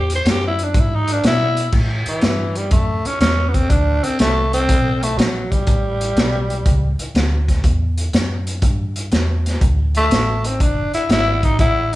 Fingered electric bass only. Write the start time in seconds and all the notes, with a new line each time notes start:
Already playing: E2
0.25 F#2
0.74 G#2
1.24 B2
1.73 A2
2.07 muted fingered electric bass stroke
2.23 G2
2.72 F#2
3.05 muted fingered electric bass stroke
3.20 E2
3.70 D2
4.20 C2
4.69 B1
5.17 A#1
5.67 A1
6.17 B1
6.66 C#2
6.99 muted fingered electric bass stroke
7.15 D2
7.64 E2
8.14 F#2
8.62 G2
9.12 E2
9.61 D2
10.10 A1
10.60 F#1
10.94 muted fingered electric bass stroke
11.09 G#1
11.59 A1